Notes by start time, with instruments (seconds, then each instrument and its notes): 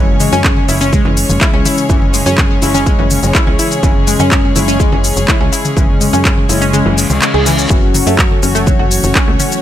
Already playing: analog synth bass F#1, analog polysynth C#3 G#3 C#4, string section E3 G#3 C#4 G#4 C#5
0.20 synth arpeggio sound G#3, open hi-hat, mid tom, shaker
0.33 analog synth bass F#2, synth arpeggio sound C#4, shaker
0.44 kick, clap, shaker
0.57 mid tom
0.69 analog synth bass F#1, analog polysynth C#3 G#3 C#4, synth arpeggio sound E4, open hi-hat, shaker
0.81 synth arpeggio sound C#4, shaker
0.93 synth arpeggio sound G#3, kick, mid tom, shaker
1.05 analog synth bass F#1, synth arpeggio sound E3
1.17 open hi-hat, shaker
1.29 analog synth bass F#1, mid tom, shaker
1.41 synth arpeggio sound E4, kick, clap, shaker
1.53 analog synth bass C#2, synth arpeggio sound C#4
1.65 synth arpeggio sound E4, open hi-hat, mid tom, shaker
1.78 shaker
1.90 analog synth bass F#1, analog polysynth C#3 G#3 C#4, synth arpeggio sound E3, kick, shaker
2.02 mid tom
2.14 synth arpeggio sound G#3, open hi-hat, shaker
2.26 analog synth bass F#2, synth arpeggio sound C#4, shaker
2.38 kick, clap, mid tom, shaker
2.62 analog synth bass F#1, analog polysynth C#3 G#3 C#4, synth arpeggio sound E4, open hi-hat, shaker
2.74 synth arpeggio sound C#4, mid tom, shaker
2.86 synth arpeggio sound G#3, kick, shaker
2.99 analog synth bass F#1, synth arpeggio sound E3
3.11 analog polysynth C#3 G#3 C#4, open hi-hat, mid tom, shaker
3.23 analog synth bass F#1, analog polysynth C#3 G#3 C#4, shaker
3.35 synth arpeggio sound E4, kick, clap, shaker
3.47 analog synth bass C#2, synth arpeggio sound C#4, mid tom
3.59 synth arpeggio sound E4, open hi-hat, shaker
3.71 shaker
3.83 analog synth bass F#1, analog polysynth C#3 G#3 C#4, synth arpeggio sound E3, kick, mid tom, shaker
4.07 synth arpeggio sound G#3, open hi-hat, shaker
4.20 analog synth bass F#2, synth arpeggio sound C#4, mid tom, shaker
4.32 kick, clap, shaker
4.56 analog synth bass F#1, analog polysynth C#3 G#3 C#4, synth arpeggio sound E4, open hi-hat, mid tom, shaker
4.68 synth arpeggio sound C#4, shaker
4.80 synth arpeggio sound G#3, kick, shaker
4.92 analog synth bass F#1, synth arpeggio sound E3, mid tom
5.04 open hi-hat, shaker
5.16 analog synth bass F#1, shaker
5.28 synth arpeggio sound E4, kick, clap, mid tom, shaker
5.41 analog synth bass C#2, synth arpeggio sound C#4
5.53 synth arpeggio sound E4, open hi-hat, shaker
5.65 mid tom, shaker
5.77 analog synth bass F#1, analog polysynth C#3 G#3 C#4, synth arpeggio sound E3, kick, shaker
6.01 synth arpeggio sound G#3, open hi-hat, mid tom, shaker
6.13 analog synth bass F#2, synth arpeggio sound C#4, shaker
6.25 kick, clap, shaker
6.38 mid tom
6.49 analog synth bass F#1, analog polysynth C#3 G#3 C#4, synth arpeggio sound E4, open hi-hat, shaker
6.62 synth arpeggio sound C#4, shaker
6.74 synth arpeggio sound G#3, mid tom, reverse cymbal, shaker
6.86 analog synth bass F#1, synth arpeggio sound E3
6.98 analog polysynth C#3 G#3 C#4, open hi-hat, shaker
7.10 analog synth bass C#2, analog polysynth C#3 G#3 C#4, mid tom, shaker
7.22 synth arpeggio sound G#3, clap, shaker
7.34 analog synth bass C#2, synth arpeggio sound G#4
7.46 synth arpeggio sound E3, open hi-hat, mid tom, shaker
7.58 shaker
7.70 analog synth bass F#1, synth arpeggio sound E3, string section E3 A3 C#4 F#4 C#5, analog polysynth F#3 C#4 F#4, kick, shaker
7.95 synth arpeggio sound F#3, open hi-hat, mid tom, shaker
8.07 analog synth bass F#2, synth arpeggio sound A3, shaker
8.19 kick, clap, shaker
8.31 mid tom
8.43 analog synth bass F#1, analog polysynth F#3 C#4 F#4, synth arpeggio sound C#4, open hi-hat, shaker
8.55 synth arpeggio sound A3, shaker
8.67 synth arpeggio sound F#3, kick, mid tom, shaker
8.79 analog synth bass F#1, synth arpeggio sound F#4
8.91 open hi-hat, shaker
9.04 analog synth bass F#1, mid tom, shaker
9.15 synth arpeggio sound C#4, kick, clap, shaker
9.28 analog synth bass C#2, synth arpeggio sound A3
9.40 synth arpeggio sound C#4, open hi-hat, mid tom, shaker
9.52 shaker